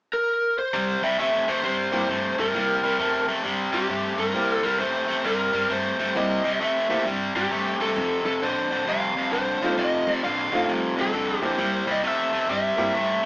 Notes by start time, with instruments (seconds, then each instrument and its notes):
0.13 lead electric guitar A#4
0.59 lead electric guitar C5
0.73 upright bass C2, overdriven electric guitar C3 G3
1.02 upright bass C2, overdriven electric guitar C3 G3, lead electric guitar E5
1.19 upright bass E2, overdriven electric guitar C3 A3, lead electric guitar E5
1.47 upright bass E2, overdriven electric guitar C3 A3, lead electric guitar C5
1.63 upright bass G2, overdriven electric guitar C3 G3, lead electric guitar C5
1.92 upright bass G2, overdriven electric guitar C3 G3, upright piano A#3 C4 E4 G4
2.08 upright bass G2, overdriven electric guitar C3 A3
2.38 upright bass G2, overdriven electric guitar C3 A3, lead electric guitar A#4
2.53 upright bass C2, overdriven electric guitar C3 G3, upright piano A#3 C4 E4 G4
2.83 upright bass C2, overdriven electric guitar C3 G3
2.99 upright bass E2, overdriven electric guitar C3 A3
3.28 upright bass E2, overdriven electric guitar C3 A3
3.44 upright bass G2, overdriven electric guitar C3 G3
3.72 upright bass G2, overdriven electric guitar C3 G3, lead electric guitar G4
3.89 upright bass G2, overdriven electric guitar C3 A3
4.18 upright bass G2, overdriven electric guitar C3 A3, lead electric guitar A#4
4.34 upright bass C2, overdriven electric guitar C3 G3, upright piano A#3 C4 E4 G4
4.63 upright bass C2, overdriven electric guitar C3 G3, lead electric guitar A#4
4.79 upright bass E2, overdriven electric guitar C3 A3, lead electric guitar C5
5.08 upright bass E2, overdriven electric guitar C3 A3
5.24 upright bass G2, overdriven electric guitar C3 G3, lead electric guitar A#4
5.53 upright bass G2, overdriven electric guitar C3 G3
5.69 upright bass G2, overdriven electric guitar C3 A3, lead electric guitar C5
5.99 upright bass G2, overdriven electric guitar C3 A3
6.15 upright bass C2, overdriven electric guitar C3 G3, upright piano A#3 C4 E4 G4, lead electric guitar D#5
6.44 upright bass C2, overdriven electric guitar C3 G3
6.60 upright bass E2, overdriven electric guitar C3 A3, lead electric guitar E5
6.89 upright bass E2, overdriven electric guitar C3 A3, upright piano A#3 C4 E4 G4
7.05 upright bass G2, overdriven electric guitar C3 G3
7.35 upright bass G2, overdriven electric guitar C3 G3, lead electric guitar G4
7.51 upright bass G2, overdriven electric guitar C3 A3
7.80 upright bass G2, overdriven electric guitar C3 A3, lead electric guitar A4
7.96 upright bass F1, overdriven electric guitar F2 C3
8.25 upright bass F1, overdriven electric guitar F2 C3, lead electric guitar A4
8.42 upright bass A1, overdriven electric guitar F2 D3, lead electric guitar C5
8.71 upright bass A1, overdriven electric guitar F2 D3
8.87 upright bass C2, overdriven electric guitar F2 C3, lead electric guitar F5
9.15 upright bass C2, overdriven electric guitar F2 C3
9.32 upright bass C2, overdriven electric guitar F2 D3, lead electric guitar C5
9.61 upright bass C2, overdriven electric guitar F2 D3, upright piano A3 C4 D#4 F4
9.77 upright bass F1, overdriven electric guitar F2 C3, lead electric guitar D#5
10.07 upright bass F1, overdriven electric guitar F2 C3
10.23 upright bass A1, overdriven electric guitar F2 D3, lead electric guitar F5
10.51 upright bass A1, overdriven electric guitar F2 D3, upright piano A3 C4 D#4 F4
10.68 upright bass C2, overdriven electric guitar F2 C3
10.97 upright bass C2, overdriven electric guitar F2 C3, lead electric guitar A4
11.13 upright bass C2, overdriven electric guitar F2 D3
11.41 upright bass B1, overdriven electric guitar F2 D3, upright piano A#3 C4 E4 G4, lead electric guitar C5
11.58 upright bass C2, overdriven electric guitar C3 G3
11.87 upright bass C2, overdriven electric guitar C3 G3
11.91 lead electric guitar D#5
12.03 upright bass E2, overdriven electric guitar C3 A3, lead electric guitar E5
12.32 upright bass E2, overdriven electric guitar C3 A3
12.49 upright bass G2, overdriven electric guitar C3 G3, lead electric guitar E5
12.76 upright bass G2, overdriven electric guitar C3 G3, upright piano A#3 C4 E4 G4
12.94 upright bass G2, overdriven electric guitar C3 A3